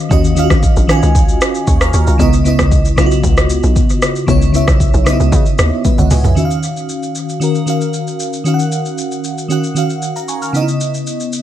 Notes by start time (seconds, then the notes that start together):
Already playing: D#3 C#4 F#4 D#5 F5
0.09 D#2 D#3 C#4 F#4 D#5, kick, shaker
0.24 shaker
0.35 D#3 C#4 F4 F5, shaker
0.44 F#4
0.50 A#1, kick, cross-stick, shaker
0.63 kick, shaker
0.76 A#1, shaker
0.87 D#3 C#4 F4 G#5, cross-stick, shaker
0.96 F#4
1.03 C#2, shaker
1.15 kick, shaker
1.29 shaker
1.41 cross-stick, shaker
1.55 shaker
1.67 D#2 G#5 C#6, kick, shaker
1.81 A#5 F6, cross-stick, shaker
1.93 D#2 G#5 C#6, shaker
2.07 C#2 F5 A#5, shaker
2.18 C#2 C#3 B3 E4 D#5, kick, shaker
2.33 shaker
2.44 C#3 B3 E4 D#5, shaker
2.59 C#2, kick, cross-stick, shaker
2.71 kick, shaker
2.85 shaker
2.96 B1 C#3 B3 E4 F4, cross-stick, shaker
3.06 F#4
3.11 shaker
3.24 C#2, kick, shaker
3.37 cross-stick, shaker
3.50 shaker
3.63 B1, shaker
3.76 kick, shaker
3.90 shaker
4.02 cross-stick, shaker
4.16 shaker
4.27 C#2 C#3 B3 E4 C#5, kick, shaker
4.42 shaker
4.52 C#3 B3 E4 E5, shaker
4.68 B1, kick, cross-stick, shaker
4.80 kick, shaker
4.94 B1, shaker
5.04 C#3 B3 D#4 D#5, cross-stick, shaker
5.13 E4
5.20 C#2, shaker
5.32 C#3, kick, shaker
5.46 shaker
5.58 D#2, cross-stick, shaker
5.85 B4 E5, kick, high tom, shaker
5.98 C#2 C#5 F#5, mid tom, shaker
6.11 C#2 D#5 G#5, mid tom, open hi-hat, shaker
6.24 B1 B4 E5, floor tom, shaker
6.35 D#3 C#4 F#4 E5, shaker
6.45 F5
6.51 shaker
6.63 shaker
6.77 shaker
6.89 shaker
7.03 shaker
7.15 shaker
7.29 shaker
7.40 D#3 C#4 F#4 A#4, shaker
7.55 shaker
7.66 D#3 C#4 F#4 F5, shaker
7.81 shaker
7.93 shaker
8.07 shaker
8.20 shaker
8.33 shaker
8.44 D#3 C#4 F#4 F5, shaker
8.54 F#5
8.59 shaker
8.72 shaker
8.85 shaker
8.98 shaker
9.11 shaker
9.24 shaker
9.38 shaker
9.48 D#3 C#4 F#4 F#5, shaker
9.64 shaker
9.74 D#3 C#4 F#4 F5, shaker
9.90 shaker
10.02 shaker
10.16 F5 A#5, shaker
10.28 G#5 C#6, shaker
10.42 A#5 F6, shaker
10.53 C#3 B3 D#4 D#5, shaker
10.62 E4
10.68 shaker
10.81 shaker
10.94 shaker
11.07 shaker
11.20 shaker
11.33 shaker